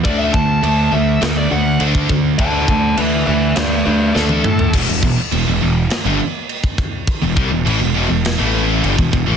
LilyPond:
<<
  \new Staff \with { instrumentName = "Lead electric guitar" } { \time 4/4 \key e \minor \tempo 4 = 102 d''16 e''16 a''4 e''8 a'16 d''16 fis''8 r4 | <fis'' a''>8 <fis'' a''>8 <b' e''>8 <b' e''>8 <b' d''>8 <b' d''>8 a'4 | r1 | r1 | }
  \new Staff \with { instrumentName = "Distorted electric guitar" } { \clef bass \time 4/4 \key e \minor <d a d'>8 <d a>8 <d a>8 <d a>8 <d a>8 <d a>8 <d a d'>8 <d a>8 | <d a d'>8 <d a>8 <d a>8 <d a>8 <d a>8 <d a>8 <d a d'>8 <d a>8 | <e, b,>16 <e, b,>16 <e, b,>16 r16 <e, b,>16 <e, b,>16 <e, b,>8 r16 <g, d>16 r4. | r16 <e, b,>16 <c g>16 <e, b,>16 <a, e>16 <e, b,>16 <e, b,>16 <e, b,>8 <a, e a>8. <g, d>16 <e, b,>16 <e, b,>16 <a, e>16 | }
  \new Staff \with { instrumentName = "Distorted electric guitar" } { \clef bass \time 4/4 \key e \minor <d a d'>8 <d a>8 <d a>8 <d a>8 <d a>8 <d a>8 <d a d'>8 <d a>8 | <d a d'>8 <d a>8 <d a>8 <d a>8 <d a>8 <d a>8 <d a d'>8 <d a>8 | <e, b,>16 <e, b,>16 <e, b,>16 r16 <e, b,>16 <e, b,>16 <e, b,>8 r16 <g, d>16 r4. | r16 <e, b,>16 <c g>16 <e, b,>16 <a, e>16 <e, b,>16 <e, b,>16 <e, b,>8 <a, e a>8. <g, d>16 <e, b,>16 <e, b,>16 <a, e>16 | }
  \new Staff \with { instrumentName = "Picked electric bass" } { \clef bass \time 4/4 \key e \minor d,8 d,8 d,8 d,8 d,8 d,8 d,4 | d,8 d,8 d,8 d,8 d,8 d,8 d,8 a,8 | e,,16 e,,16 e,,16 r16 e,,16 e,,16 e,,8 r16 g,,16 r4. | r16 e,,16 c,16 e,,16 a,,16 e,,16 e,,16 e,,8 a,,8. g,,16 e,,16 e,,16 a,,16 | }
  \new DrumStaff \with { instrumentName = "Drums" } \drummode { \time 4/4 <cymc bd>8 bd8 cymc4 <cymc sn>4 cymc16 bd16 bd8 | <cymc bd>8 bd8 cymc4 <cymc sn>4 sn16 tommh16 toml16 tomfh16 | <cymc bd>8 bd8 cymc4 <cymc sn>4 cymc16 bd16 bd8 | <cymc bd>8 bd8 cymc4 <cymc sn>4 cymc16 bd16 bd8 | }
>>